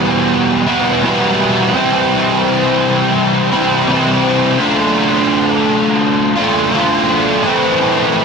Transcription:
0.00 0.65 E2 loud
0.00 0.66 B2 medium
0.00 0.66 E3 loud
0.00 0.66 G3 loud
0.00 0.66 B3 loud
0.00 0.65 E4 loud
0.67 1.01 E2 medium
0.67 1.02 B2 medium
0.67 1.02 E3 medium
0.67 1.02 G3 medium
0.67 1.01 B3 medium
0.67 1.01 E4 medium
1.02 1.72 E2 medium
1.02 1.72 B2 medium
1.02 1.73 E3 medium
1.02 1.73 G3 medium
1.02 1.73 B3 medium
1.02 1.73 E4 loud
1.73 3.50 C3 loud
1.73 3.50 E3 loud
1.73 3.51 G3 loud
1.73 3.52 C4 loud
1.73 3.50 E4 loud
3.51 3.87 E3 medium
3.51 3.86 G3 medium
3.51 3.91 C4 medium
3.51 3.85 E4 medium
3.56 3.86 C3 medium
3.87 4.56 C3 medium
3.87 4.57 E3 loud
3.87 4.58 G3 medium
3.87 4.60 C4 medium
3.92 4.59 E4 medium
4.58 6.34 D3 medium
4.58 6.34 A3 loud
4.58 6.35 D4 loud
4.58 6.34 F4 medium
6.36 6.70 D3 medium
6.36 6.71 A3 medium
6.36 6.70 D4 medium
6.36 6.69 F4 medium
6.71 7.40 D3 medium
6.71 7.41 A3 medium
6.71 7.42 D4 medium
6.75 7.42 F4 medium
7.42 8.25 A2 medium
7.42 8.25 E3 loud
7.42 8.25 A3 medium
7.42 8.25 C4 loud
7.42 8.25 E4 loud

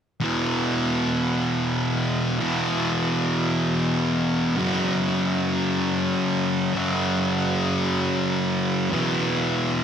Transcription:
0.20 2.37 E2 soft
0.20 2.38 B2 medium
0.20 2.42 E3 medium
2.39 4.55 E2 soft
2.39 4.56 B2 medium
2.39 4.59 E3 medium
4.56 6.72 F#2 medium
4.56 6.73 C#3 medium
4.56 6.77 F#3 medium
6.74 8.89 F#2 medium
6.74 8.90 C#3 soft
6.74 8.91 F#3 medium
8.91 9.84 E2 medium
8.91 9.84 B2 medium
8.91 9.84 E3 medium

